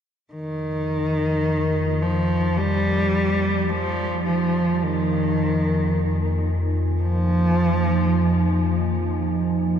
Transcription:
0.33 9.79 F2 medium
0.33 2.04 D#3 medium
0.33 9.79 F3 medium
1.12 9.79 A#3 medium
2.02 2.59 F3 medium
2.57 3.71 G3 medium
3.15 9.79 G#5 medium
3.68 4.25 F3 medium
3.68 9.79 D#4 medium
4.25 4.74 F3 medium
4.74 4.84 F3 soft
4.82 6.48 D#3 medium
7.02 8.65 F3 medium

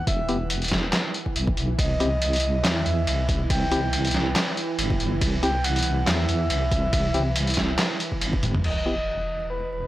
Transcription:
0.00 8.63 E3 medium
0.07 0.92 E1 loud
0.07 0.47 E5 medium
0.07 kick loud
0.07 closed hi-hat medium
0.29 0.37 B3 medium
0.29 0.37 E4 medium
0.29 0.37 G4 medium
0.29 closed hi-hat medium
0.50 closed hi-hat medium
0.62 closed hi-hat soft
0.64 closed hi-hat medium
0.68 kick medium
0.68 snare medium
0.68 closed hi-hat medium
0.93 snare loud
0.93 clap medium
0.93 closed hi-hat medium
1.14 closed hi-hat medium
1.26 kick medium
1.36 1.56 B1 medium
1.36 closed hi-hat medium
1.47 kick loud
1.57 1.77 B1 medium
1.57 closed hi-hat soft
1.79 2.63 C2 loud
1.79 2.66 D#5 loud
1.79 kick loud
1.79 closed hi-hat medium
1.79 ride medium
2.00 2.09 C4 loud
2.00 2.09 E4 medium
2.00 2.09 G4 loud
2.00 closed hi-hat medium
2.22 closed hi-hat medium
2.22 ride soft
2.33 closed hi-hat soft
2.36 closed hi-hat medium
2.40 closed hi-hat medium
2.64 2.84 E2 medium
2.64 3.29 E5 loud
2.64 snare loud
2.64 clap medium
2.64 closed hi-hat medium
2.64 ride medium
2.86 3.06 E2 loud
2.86 closed hi-hat medium
3.07 3.49 C2 loud
3.07 closed hi-hat medium
3.07 ride medium
3.29 kick loud
3.29 closed hi-hat medium
3.50 4.35 C2 loud
3.50 4.32 G5 loud
3.50 kick loud
3.50 closed hi-hat medium
3.50 ride medium
3.72 3.80 C4 medium
3.72 3.80 E4 medium
3.72 3.80 G4 medium
3.72 closed hi-hat medium
3.93 closed hi-hat medium
3.93 ride soft
4.05 closed hi-hat soft
4.07 closed hi-hat medium
4.11 snare medium
4.11 closed hi-hat medium
4.36 snare loud
4.36 clap medium
4.36 closed hi-hat medium
4.36 ride medium
4.57 closed hi-hat medium
4.79 4.98 G1 medium
4.79 closed hi-hat medium
4.79 ride soft
4.90 kick loud
5.00 5.20 G1 medium
5.00 closed hi-hat medium
5.21 6.06 C2 loud
5.21 kick loud
5.21 closed hi-hat medium
5.21 ride medium
5.43 5.52 C4 loud
5.43 5.51 E4 medium
5.43 5.51 G4 loud
5.43 5.66 G5 loud
5.43 closed hi-hat medium
5.64 6.09 F#5 loud
5.64 closed hi-hat medium
5.64 ride soft
5.76 closed hi-hat medium
5.79 closed hi-hat medium
5.83 closed hi-hat medium
6.07 6.27 E2 medium
6.07 8.22 E5 loud
6.07 snare loud
6.07 clap medium
6.07 closed hi-hat medium
6.07 ride medium
6.29 6.49 E2 loud
6.29 closed hi-hat medium
6.50 6.92 C2 loud
6.50 closed hi-hat medium
6.50 ride medium
6.71 kick loud
6.71 closed hi-hat medium
6.93 7.77 C2 loud
6.93 kick loud
6.93 closed hi-hat medium
6.93 ride medium
7.14 7.23 C4 medium
7.14 7.23 E4 medium
7.14 7.23 G4 medium
7.14 closed hi-hat medium
7.36 closed hi-hat medium
7.36 ride soft
7.47 closed hi-hat medium
7.50 closed hi-hat medium
7.54 kick medium
7.54 snare medium
7.54 closed hi-hat medium
7.79 snare loud
7.79 clap medium
7.79 closed hi-hat medium
7.79 ride medium
8.00 closed hi-hat medium
8.12 kick medium
8.21 8.41 G1 medium
8.21 closed hi-hat medium
8.21 ride medium
8.33 kick loud
8.43 8.63 G1 medium
8.43 closed hi-hat medium
8.43 high tom medium
8.55 mid tom medium
8.64 9.87 E1 medium
8.64 9.87 E3 medium
8.64 9.46 D#5 loud
8.64 crash medium
8.64 sub drop medium
8.86 8.94 B3 medium
8.86 8.94 E4 medium
8.86 8.94 G4 loud
9.50 9.70 B4 medium
9.71 9.87 B4 medium

